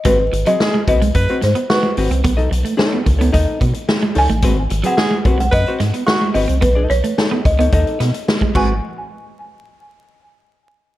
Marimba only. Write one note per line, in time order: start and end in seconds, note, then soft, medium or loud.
0.07 0.44 B4 loud
0.47 0.87 D#5 loud
0.89 1.44 D#5 loud
1.44 1.55 C5 medium
1.72 2.09 B4 medium
4.18 4.87 G#5 loud
4.86 5.39 F#5 loud
5.40 5.46 F#5 medium
5.54 6.33 D#5 loud
6.34 6.63 D#5 medium
6.61 6.90 B4 medium
6.90 7.46 C#5 medium
7.46 7.52 D#5 medium
7.59 8.37 D#5 medium
8.56 8.81 G#5 medium